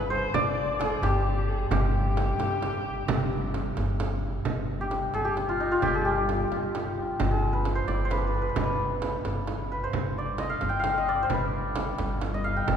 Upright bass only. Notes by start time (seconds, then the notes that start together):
Already playing: G1
0.34 G1
1.02 G1
1.71 G1
2.39 G1
3.09 G1
3.78 G1
4.46 G1
5.15 G1
5.83 G1
6.51 G1
7.20 G1
7.88 G1
8.57 G1
9.25 G1
9.94 G1
10.62 G1
11.30 G1
11.99 G1
12.68 G1